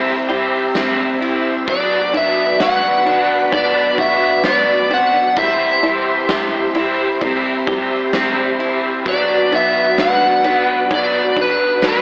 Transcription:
Already playing: fm bass C2, overdriven electric guitar C3 G3 C4 E4, clean electric guitar E3 C4 E4 G4, string machine G4 C5 E5 C6
0.29 fm bass C2, clean electric guitar G4, ride
0.74 fm bass C2, overdriven electric guitar C3 G3 C4, clean electric guitar C4, snare, ride, tambourine
0.79 overdriven electric guitar E4
1.21 fm bass A1, clean electric guitar E4, ride
1.67 fm bass B1, overdriven electric guitar B2 F#3 B3 D4, clean electric guitar F#3, string machine F#4 B4 D5 B5, electric slide guitar D5, kick, ride
2.14 fm bass B1, clean electric guitar D4, electric slide guitar E5, ride
2.60 fm bass B1, clean electric guitar F#4, electric slide guitar F#5, snare, ride, tambourine
3.06 fm bass B1, overdriven electric guitar B3 D4, clean electric guitar D4, ride
3.11 overdriven electric guitar F#3
3.50 fm bass B1, overdriven electric guitar B2 F#3, clean electric guitar B3, kick, ride
3.55 overdriven electric guitar B3 D4, electric slide guitar D5
3.98 fm bass B1, clean electric guitar F#4, electric slide guitar E5, kick, ride
4.44 fm bass B1, clean electric guitar B3, electric slide guitar D5, snare, ride, tambourine
4.90 fm bass B1, clean electric guitar C4, electric slide guitar F#5, ride
5.13 clean electric guitar D4
5.36 fm bass C2, overdriven electric guitar C3 G3 C4 E4, clean electric guitar E3, string machine G4 C5 E5 C6, electric slide guitar E5, kick, ride
5.83 fm bass C2, clean electric guitar E4, ride
6.29 fm bass C2, clean electric guitar G4, snare, ride, tambourine
6.75 fm bass C2, overdriven electric guitar C4 E4, clean electric guitar E4, ride
6.79 overdriven electric guitar G3
7.21 fm bass C2, overdriven electric guitar C3 G3 C4 E4, clean electric guitar C4, kick, ride
7.67 fm bass C2, clean electric guitar G4, kick, ride
8.12 fm bass C2, overdriven electric guitar C3 G3 C4, clean electric guitar C4, snare, ride, tambourine
8.17 overdriven electric guitar E4
8.59 fm bass A1, clean electric guitar E4, ride
9.04 fm bass B1, overdriven electric guitar B2 F#3 B3 D4, clean electric guitar F#3, string machine F#4 B4 D5 B5, kick, ride
9.09 electric slide guitar D5
9.52 fm bass B1, clean electric guitar B3, electric slide guitar E5, ride
9.98 fm bass B1, clean electric guitar D4, electric slide guitar F#5, snare, ride, tambourine
10.44 fm bass B1, clean electric guitar B3, overdriven electric guitar B3 D4, ride
10.49 overdriven electric guitar F#3
10.91 fm bass B1, overdriven electric guitar B2 F#3 B3 D4, clean electric guitar F#3, kick, ride
10.95 electric slide guitar D5
11.37 fm bass B1, clean electric guitar D4, kick, ride
11.41 electric slide guitar B4
11.82 fm bass B1, overdriven electric guitar B2 F#3 B3, clean electric guitar F#3, snare, ride, tambourine
11.87 overdriven electric guitar D4, electric slide guitar B4

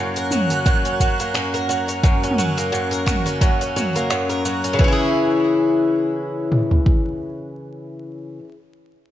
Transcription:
Already playing: twelve-string acoustic guitar F#2 F#3 A#3 C#4, synth texture F#6
0.16 twelve-string acoustic guitar A#4, open hi-hat, shaker
0.31 twelve-string acoustic guitar F#3, mid tom, shaker
0.50 twelve-string acoustic guitar C#4, open hi-hat, shaker
0.66 twelve-string acoustic guitar F#2, kick, shaker
0.85 twelve-string acoustic guitar C#4, open hi-hat, shaker
1.00 twelve-string acoustic guitar F#3, kick, shaker
1.20 twelve-string acoustic guitar A#3, open hi-hat, shaker
1.34 twelve-string acoustic guitar F#2, finger snap, shaker
1.54 twelve-string acoustic guitar A#4, open hi-hat, shaker
1.69 twelve-string acoustic guitar F#3, shaker
1.88 twelve-string acoustic guitar C#4, open hi-hat, shaker
2.03 twelve-string acoustic guitar F#2, kick, shaker
2.23 twelve-string acoustic guitar C#4, open hi-hat, shaker
2.31 mid tom
2.38 twelve-string acoustic guitar F#3, shaker
2.57 twelve-string acoustic guitar A#3, open hi-hat, shaker
2.72 twelve-string acoustic guitar F#2, shaker
2.91 twelve-string acoustic guitar A#4, open hi-hat, shaker
3.06 twelve-string acoustic guitar F#3, finger snap, kick, mid tom, shaker
3.26 twelve-string acoustic guitar C#4, open hi-hat, shaker
3.41 twelve-string acoustic guitar F#2, kick, shaker
3.61 twelve-string acoustic guitar C#4, open hi-hat, shaker
3.76 twelve-string acoustic guitar F#3, mid tom, shaker
3.96 twelve-string acoustic guitar A#3, open hi-hat, shaker
4.10 twelve-string acoustic guitar F#2, finger snap, shaker
4.29 twelve-string acoustic guitar A#4, open hi-hat, shaker
4.45 twelve-string acoustic guitar F#3, shaker
4.64 twelve-string acoustic guitar C#4, open hi-hat, shaker
4.73 twelve-string acoustic guitar C#3
4.79 twelve-string acoustic guitar E3, kick
4.84 twelve-string acoustic guitar C#4
4.88 twelve-string acoustic guitar E4
4.92 twelve-string acoustic guitar G#4
6.52 mid tom
6.71 floor tom
6.86 kick

